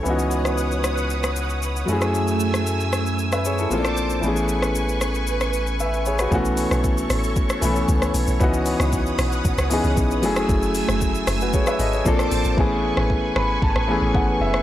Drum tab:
HH |----------------|----------------|----------------|--o---o---o---o-|
SH |xxxxxxxxxxxxxxxx|xxxxxxxxxxxxxxxx|xxxxxxxxxxxxxxxx|xxxxxxxxxxxxxxxx|
SD |---r--r--r-----r|---r--r--r---r--|---r--r--r-----r|---r--r--r---r--|
BD |----------------|----------------|----------------|o---o---o---o---|

HH |--o---o---o---o-|--o---o---o---o-|----------------|
SH |xxxxxxxxxxxxxxxx|xxxxxxxxxxxxxxxx|----------------|
SD |---r--r--r-----r|---r--r--r---r--|---r--r--r-----r|
BD |o---o---o---o---|o---o---o---o---|o---o---o---o---|